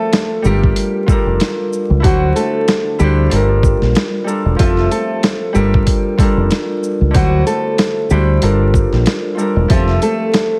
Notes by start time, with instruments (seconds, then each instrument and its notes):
Already playing: harp F3 C4 G4 A4 E5, nylon-string guitar A3 A4
0.13 snare, closed hi-hat
0.42 fingered electric bass G1, harp G3 D4 A4 A#4, nylon-string guitar G4, shaker
0.47 nylon-string guitar G3, harp F4
0.64 kick
0.76 closed hi-hat
1.06 harp G3 D4 F4 A4, kick, shaker
1.12 harp A#4
1.26 fingered electric bass F1
1.40 snare, closed hi-hat
1.73 shaker
1.90 fingered electric bass C#2
2.00 harp D3 D4 E4 F#4
2.04 fingered electric bass D2, nylon-string guitar F#3 F#4, harp C5, kick, closed hi-hat
2.36 nylon-string guitar A3 A4, closed hi-hat, shaker
2.68 snare, closed hi-hat
2.99 fingered electric bass D2, harp D3 D4 E4 F#4, nylon-string guitar G3 G4, shaker
3.04 harp C5
3.30 fingered electric bass G1, harp G3 D4 F4 A4, closed hi-hat
3.35 harp A#4
3.63 kick, shaker
3.82 fingered electric bass A#1, snare
3.95 snare, closed hi-hat
4.24 harp G3 D4 A4 A#4, shaker
4.29 harp F4
4.45 fingered electric bass E1
4.56 fingered electric bass F1, harp F3 C4 G4 A4, nylon-string guitar F4, kick, closed hi-hat
4.60 nylon-string guitar F3, harp E5
4.77 snare
4.91 nylon-string guitar A3 A4, closed hi-hat, shaker
5.23 snare, closed hi-hat
5.53 fingered electric bass G1, harp G3 D4 A4 A#4, nylon-string guitar G3 G4, shaker
5.58 harp F4
5.74 kick
5.87 kick, closed hi-hat
6.18 harp G3 D4 F4 A4, kick, closed hi-hat, shaker
6.22 harp A#4
6.37 fingered electric bass F1
6.51 snare, closed hi-hat
6.83 shaker
7.01 fingered electric bass C#2
7.11 harp D3 D4 F#4 C5, closed hi-hat
7.15 fingered electric bass D2, nylon-string guitar F#3 F#4, harp E4, kick
7.47 nylon-string guitar A3 A4, closed hi-hat, shaker
7.78 snare, closed hi-hat
8.10 fingered electric bass D2, harp D3 D4 E4 F#4 C5, nylon-string guitar G3 G4, shaker
8.42 fingered electric bass G1, harp G3 D4 F4 A4 A#4, closed hi-hat
8.74 kick, shaker
8.92 fingered electric bass A#1, snare
9.06 snare, closed hi-hat
9.35 harp G3 D4 F4 A4, shaker
9.41 harp A#4
9.56 fingered electric bass E1
9.68 fingered electric bass F1, harp F3 C4 G4 A4 E5, nylon-string guitar F3 F4, kick, closed hi-hat
9.88 snare
10.02 nylon-string guitar A3 A4, closed hi-hat, shaker
10.34 snare, closed hi-hat